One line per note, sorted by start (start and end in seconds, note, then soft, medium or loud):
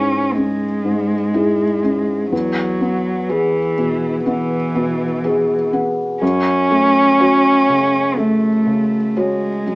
0.00 0.31 C#2 soft
0.00 0.65 G#2 soft
0.00 0.35 C#4 medium
0.00 0.35 C#4 soft
0.00 1.34 E4 soft
0.00 1.34 G#4 soft
0.33 2.31 G#3 medium
0.33 1.14 C#4 soft
0.84 1.63 G#2 soft
1.34 1.79 E4 soft
1.34 1.79 G#4 soft
1.83 2.32 C#4 soft
2.32 4.23 E2 soft
2.32 3.32 F#3 medium
2.81 3.59 B3 soft
3.29 4.27 E3 medium
3.29 3.74 G#4 soft
3.78 4.55 B2 soft
4.26 5.70 E3 medium
4.26 5.04 B3 soft
4.75 5.53 B2 soft
5.24 5.69 G#4 soft
5.73 6.22 B3 soft
6.22 8.14 F#2 medium
6.22 8.20 C#4 medium
6.71 7.49 A3 soft
7.20 7.65 F#4 soft
7.20 7.65 C#5 soft
7.69 8.47 C#3 soft
8.17 8.97 A3 soft
8.17 9.20 A3 medium
8.66 9.47 C#3 soft
9.16 9.75 G#3 medium
9.16 9.63 F#4 soft
9.16 9.63 C#5 soft
9.66 9.75 F#3 soft